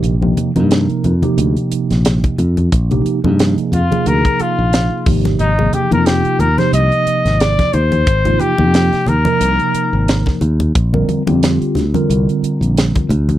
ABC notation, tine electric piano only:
X:1
M:4/4
L:1/16
Q:"Swing 16ths" 1/4=90
K:Ablyd
V:1 name="Tine electric piano"
[C,F,B,EG] [C,F,B,EG]2 [C,F,B,EB]3 z [C,F,B,EG]6- [C,F,B,EG] z2 | z [C,F,B,EG]2 [C,F,B,EA]3 z [C,F,B,EA]6- [C,F,B,EA] [C,F,B,EG]2- | [C,F,B,EG] [C,F,B,EA]2 [C,F,B,EF]3 z [C,F,B,EG]6- [C,F,B,EG] z2 | z [C,F,B,EF]2 [C,F,B,EG]3 z [C,F,B,EB]6- [C,F,B,EB] z2 |
z [D,G,CFB]2 [D,G,CFG]3 z [D,G,CFB]6- [D,G,CFB] z2 |]